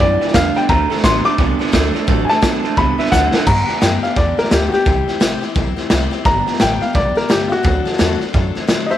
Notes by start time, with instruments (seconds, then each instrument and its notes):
0.00 upright bass F#2, clean electric guitar G2 E3, steel-string acoustic guitar G3 B3 D4 G4, upright piano D5
0.21 clean electric guitar G2 E3, steel-string acoustic guitar G3 B3 D4 G4, snare
0.28 snare
0.34 upright bass E2, steel-string acoustic guitar G2 D3 G3 B3 D4 G4, clean electric guitar G2 D3, upright piano F5, kick, snare, hi-hat pedal
0.55 clean electric guitar G2 D3, steel-string acoustic guitar G3 B3 D4 G4, upright piano G5, muted upright bass stroke, snare
0.69 upright bass D2, steel-string acoustic guitar D3 F#3 C4 D4 A4, clean electric guitar D3 A3, upright piano A#5, kick, snare
0.90 clean electric guitar D3 A3, steel-string acoustic guitar C4 D4 A4, muted upright bass stroke, snare
0.97 snare
1.04 upright bass A1, clean electric guitar D3 B3, steel-string acoustic guitar D3 F#3 C4 D4 A4, upright piano C6, kick, snare, hi-hat pedal
1.25 clean electric guitar D3 A3, steel-string acoustic guitar C4 D4 A4, upright piano D6, muted upright bass stroke, snare
1.38 upright bass C2, clean electric guitar D3 B3, steel-string acoustic guitar F#3 C4 D4 A4, kick, snare
1.59 clean electric guitar D3 B3, steel-string acoustic guitar C4 D4 A4, snare
1.67 snare
1.72 upright bass D2, steel-string acoustic guitar D3 F#3 C4 D4 A4, clean electric guitar D3 A3, kick, snare, hi-hat pedal
1.93 clean electric guitar D3 A3, steel-string acoustic guitar C4 D4 A4, snare
2.07 upright bass A1, steel-string acoustic guitar D3 F#3 C4 D4 A4, clean electric guitar D3 A3, kick, snare
2.25 steel-string acoustic guitar A4, upright piano G#5
2.29 clean electric guitar D3 A3, steel-string acoustic guitar C4 D4, upright piano A5, snare
2.42 steel-string acoustic guitar D3 F#3 C4 D4 A4, clean electric guitar D3 B3, kick, snare, hi-hat pedal
2.63 clean electric guitar D3 A3, steel-string acoustic guitar C4 D4 A4, snare
2.77 upright bass C2, clean electric guitar D3 B3, steel-string acoustic guitar F#3 C4 D4 A4, upright piano B5, kick, snare
2.98 clean electric guitar D3 B3, steel-string acoustic guitar C4 D4 A4, upright piano E5, muted upright bass stroke, snare
3.06 snare
3.12 upright bass D2, steel-string acoustic guitar D3 F#3 C4 D4 A4, clean electric guitar D3 A3, upright piano F#5, kick, snare, hi-hat pedal
3.33 clean electric guitar D3 A3, steel-string acoustic guitar C4 D4 A4, snare
3.46 steel-string acoustic guitar G2 D3 G3 B3 D4 G4, upright bass G2, upright piano A#5, kick, snare, crash
3.67 steel-string acoustic guitar G3 B3 D4 G4, muted upright bass stroke, snare
3.81 upright bass F#2, steel-string acoustic guitar G2 D3 G3 B3 D4 G4, upright piano G5, snare, hi-hat pedal
4.03 steel-string acoustic guitar G3 B3 D4 G4, upright piano F5, snare
4.16 upright bass E2, steel-string acoustic guitar G3 B3 D4 G4, upright piano D5, kick, snare
4.37 steel-string acoustic guitar G3 B3 D4 G4, upright piano A#4, snare
4.45 snare
4.51 upright bass D2, steel-string acoustic guitar G2 D3 G3 B3 D4 G4, upright piano G4, snare, hi-hat pedal
4.69 upright piano F#4, steel-string acoustic guitar G4
4.73 steel-string acoustic guitar G3 B3 D4, upright piano G4, snare
4.85 upright bass C2, steel-string acoustic guitar C3 G3 C4 E4 G4, kick, snare
5.07 steel-string acoustic guitar C4 E4 G4, muted upright bass stroke, snare
5.20 upright bass A1, steel-string acoustic guitar C3 G3 C4 E4 G4, snare, hi-hat pedal
5.41 steel-string acoustic guitar C4 E4 G4, snare
5.54 upright bass B1, steel-string acoustic guitar G3 C4 E4 G4, kick, snare
5.76 steel-string acoustic guitar C4 E4 G4, snare
5.90 upright bass C2, steel-string acoustic guitar C3 G3 C4 E4 G4, snare, hi-hat pedal
6.11 steel-string acoustic guitar C4 E4 G4, snare
6.25 upright bass G1, steel-string acoustic guitar G2 D3 G3 B3 D4 G4, upright piano A#5, kick, snare
6.46 steel-string acoustic guitar G3 B3 D4 G4, muted upright bass stroke, snare
6.53 snare
6.59 upright bass A1, steel-string acoustic guitar G2 D3 G3 B3 D4 G4, upright piano G5, snare, hi-hat pedal
6.81 steel-string acoustic guitar G3 B3 D4 G4, upright piano F5, muted upright bass stroke, snare
6.93 upright bass B1, steel-string acoustic guitar G3 B3 D4 G4, upright piano D5, kick, snare
7.15 steel-string acoustic guitar G3 B3 D4 G4, upright piano A#4, snare
7.29 upright bass C2, steel-string acoustic guitar G2 D3 G3 B3 D4 G4, upright piano G4, snare, hi-hat pedal
7.48 steel-string acoustic guitar B3 D4 G4, upright piano F4, snare
7.52 steel-string acoustic guitar G3, upright piano F#4, muted upright bass stroke
7.63 upright bass D2, steel-string acoustic guitar D3 F#3 C4 D4 A4, kick, snare
7.85 steel-string acoustic guitar C4 D4 A4, snare
7.93 snare
7.98 upright bass E2, steel-string acoustic guitar D3 F#3 C4 D4 A4, snare, hi-hat pedal
8.20 steel-string acoustic guitar C4 D4 A4, snare
8.33 upright bass F#2, steel-string acoustic guitar F#3 C4 D4 A4, kick, snare
8.55 steel-string acoustic guitar C4 D4 A4, muted upright bass stroke, snare
8.67 upright bass A2, steel-string acoustic guitar D3 F#3 C4 D4 A4, snare, hi-hat pedal
8.86 steel-string acoustic guitar A4, upright piano C5 D#5, snare
8.91 steel-string acoustic guitar C4 D4, upright piano E5, muted upright bass stroke